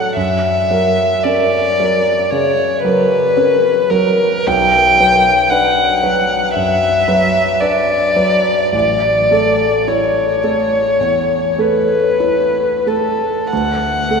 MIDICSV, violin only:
0, 0, Header, 1, 2, 480
1, 0, Start_track
1, 0, Tempo, 1065719
1, 71, Time_signature, 4, 2, 24, 8
1, 1510, Tempo, 1113173
1, 1990, Tempo, 1047120
1, 3430, Tempo, 1132075
1, 4870, Tempo, 1200000
1, 5350, Tempo, 1315789
1, 5830, Tempo, 1162791
1, 6111, End_track
2, 0, Start_track
2, 0, Title_t, "Violin"
2, 0, Program_c, 0, 40
2, 0, Note_on_c, 0, 78, 51
2, 71, Note_off_c, 0, 78, 0
2, 80, Note_on_c, 0, 76, 54
2, 557, Note_on_c, 0, 74, 53
2, 564, Note_off_c, 0, 76, 0
2, 1037, Note_on_c, 0, 73, 52
2, 1044, Note_off_c, 0, 74, 0
2, 1274, Note_off_c, 0, 73, 0
2, 1276, Note_on_c, 0, 71, 55
2, 1744, Note_on_c, 0, 70, 53
2, 1750, Note_off_c, 0, 71, 0
2, 1991, Note_on_c, 0, 79, 75
2, 1998, Note_off_c, 0, 70, 0
2, 2464, Note_on_c, 0, 78, 58
2, 2471, Note_off_c, 0, 79, 0
2, 2941, Note_off_c, 0, 78, 0
2, 2943, Note_on_c, 0, 76, 68
2, 3428, Note_on_c, 0, 74, 61
2, 3434, Note_off_c, 0, 76, 0
2, 3907, Note_off_c, 0, 74, 0
2, 3916, Note_on_c, 0, 74, 57
2, 4391, Note_on_c, 0, 73, 43
2, 4397, Note_off_c, 0, 74, 0
2, 5108, Note_on_c, 0, 71, 42
2, 5114, Note_off_c, 0, 73, 0
2, 5594, Note_on_c, 0, 69, 35
2, 5600, Note_off_c, 0, 71, 0
2, 5827, Note_off_c, 0, 69, 0
2, 5829, Note_on_c, 0, 78, 56
2, 6111, Note_off_c, 0, 78, 0
2, 6111, End_track
0, 0, End_of_file